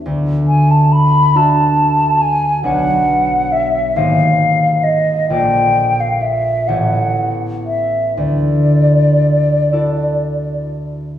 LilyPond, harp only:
\new Staff \with { instrumentName = "Harp" } { \time 6/8 \key a \major \tempo 4. = 44 <d, d' fis'>4. <d' fis' a' e''>4. | <b,, d' fis' b' cis''>4. <gis,, ais g' bis' dis''>4. | <bes,, bes f' a' d''>4. <a,, b g' a' cis''>4. | d,4. <e' fis' a' d''>4. | }